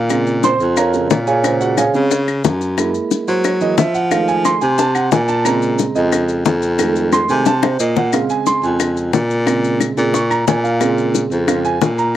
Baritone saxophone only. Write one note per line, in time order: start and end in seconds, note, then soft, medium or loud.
0.00 0.55 A#2 medium
0.60 1.07 F2 medium
1.11 1.89 A#2 medium
1.94 2.41 C#3 medium
2.44 2.95 F#2 medium
3.28 3.75 F#3 medium
3.78 4.56 F3 medium
4.62 5.09 C3 loud
5.12 5.90 A#2 loud
5.96 6.42 F2 loud
6.45 7.24 F2 loud
7.29 7.76 C3 medium
7.79 8.30 A#2 medium
8.64 9.10 F2 medium
9.14 9.92 A#2 loud
9.97 10.44 A#2 medium
10.47 11.25 A#2 medium
11.31 11.78 F2 medium
11.82 12.16 A#2 medium